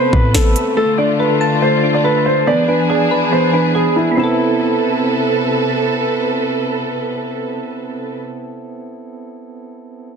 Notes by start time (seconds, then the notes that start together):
Already playing: C3 A3 B3 C4 A4 B4 C5
0.13 A2 C4 B4, kick
0.34 A1 A4, snare
0.56 closed hi-hat
0.77 D3 A3 F4 A4
0.98 D4 D5
1.19 A4 B4
1.41 A5
1.62 A3 C5
1.83 D4
1.94 D5
2.04 A4 B4
2.26 C5
2.47 E3 B3 D4 G#4 D5
2.68 D4 B4
2.90 G#4 D5
3.11 B4
3.32 B3 C5
3.53 D4 B4
3.75 G#4
3.96 E4
4.11 B3
4.15 C3 C4 E4 A4 B4
4.20 E4
4.24 A4